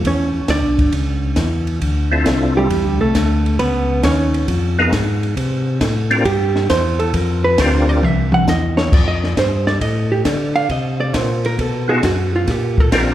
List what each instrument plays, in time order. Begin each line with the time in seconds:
0.04 tonewheel organ E2, hollow-body jazz guitar C#4 C#5, kick, ride
0.34 tonewheel organ E2
0.48 tonewheel organ D2, hollow-body jazz guitar D4 D5, kick, snare, hi-hat pedal, ride
0.62 tonewheel organ B1
0.77 tonewheel organ G1, kick, ride
0.93 tonewheel organ C#2, kick, ride
1.36 tonewheel organ E2, kick, snare, hi-hat pedal, ride
1.67 ride
1.82 tonewheel organ D2, kick, ride
2.12 tonewheel organ C4 D4 E4 F4 A4
2.26 tonewheel organ C2, kick, snare, hi-hat pedal, ride
2.57 hollow-body jazz guitar G3 G4
2.70 tonewheel organ E2, kick, ride
2.84 tonewheel organ D2
2.99 tonewheel organ C2, hollow-body jazz guitar A3 A4
3.15 tonewheel organ D2, kick, snare, hi-hat pedal, ride
3.46 ride
3.59 tonewheel organ C#2, hollow-body jazz guitar B3 B4, kick, ride
4.03 tonewheel organ D#2, hollow-body jazz guitar C#4 C#5, kick, snare, hi-hat pedal, ride
4.34 ride
4.48 tonewheel organ F2, kick, ride
4.79 tonewheel organ B3 D#4 F4 G#4 A#4
4.92 tonewheel organ G#2, kick, snare, hi-hat pedal, ride
5.23 ride
5.37 tonewheel organ C3, kick, ride
5.81 tonewheel organ A2, kick, snare, hi-hat pedal, ride
6.11 tonewheel organ C4 D4 F4 G4 A#4, ride
6.25 tonewheel organ G2, hollow-body jazz guitar G4, kick, ride
6.56 snare
6.70 tonewheel organ E2, hollow-body jazz guitar C5, kick, snare, hi-hat pedal, ride
6.99 hollow-body jazz guitar A4, ride
7.14 tonewheel organ F2, hollow-body jazz guitar A#4, kick, ride
7.44 hollow-body jazz guitar B4
7.58 tonewheel organ D2 C4 D4 F4 G4 A#4, hollow-body jazz guitar C5, kick, snare, hi-hat pedal, ride
7.89 hollow-body jazz guitar D5
8.02 tonewheel organ C2, hollow-body jazz guitar E5, mid tom
8.32 hollow-body jazz guitar F#5, mid tom
8.46 tonewheel organ E2, hollow-body jazz guitar D#5, snare, hi-hat pedal
8.77 hollow-body jazz guitar C#5, snare
8.92 tonewheel organ F2, hollow-body jazz guitar D5, kick, crash
9.08 hollow-body jazz guitar D#5
9.24 hollow-body jazz guitar D5, snare
9.37 tonewheel organ G2, hollow-body jazz guitar C5, kick, snare, hi-hat pedal, ride
9.67 hollow-body jazz guitar D5, snare
9.81 tonewheel organ A2, hollow-body jazz guitar D#5, kick, ride
10.12 hollow-body jazz guitar G4
10.25 tonewheel organ D3, kick, snare, hi-hat pedal, ride
10.56 hollow-body jazz guitar F5, ride
10.69 tonewheel organ C3, hollow-body jazz guitar D#5, kick, ride
11.00 hollow-body jazz guitar D5
11.14 tonewheel organ A#2, hollow-body jazz guitar C5, kick, snare, hi-hat pedal, ride
11.45 hollow-body jazz guitar A#4, ride
11.58 tonewheel organ B2, hollow-body jazz guitar A4, kick, ride
11.88 tonewheel organ B3 D#4 F4 F#4 A4, hollow-body jazz guitar G#4
12.03 tonewheel organ F#2, hollow-body jazz guitar F#4, kick, snare, hi-hat pedal, ride
12.36 hollow-body jazz guitar F4
12.47 tonewheel organ A#2, hollow-body jazz guitar G4, kick, snare, ride
12.78 hollow-body jazz guitar A4, kick
12.92 tonewheel organ A#1 C4 D4 F4 G4 A#4, hollow-body jazz guitar A#4, kick, snare, hi-hat pedal, ride